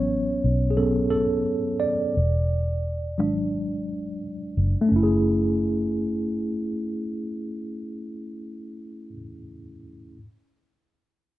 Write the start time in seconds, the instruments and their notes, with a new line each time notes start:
Already playing: fingered electric bass A1, tine electric piano F#3 B3 C#4 C#5
0.44 fingered electric bass B1
0.71 tine electric piano G#4
0.77 tine electric piano F#3 B3 C#4 A4
1.11 tine electric piano A4
1.80 tine electric piano D5
2.17 fingered electric bass E1
3.18 fingered electric bass G#1, tine electric piano F#3 G#3 D4
4.57 fingered electric bass F#1
4.81 tine electric piano A3
4.89 fingered electric bass F#1, tine electric piano C#4
4.96 tine electric piano E4
5.03 tine electric piano G#4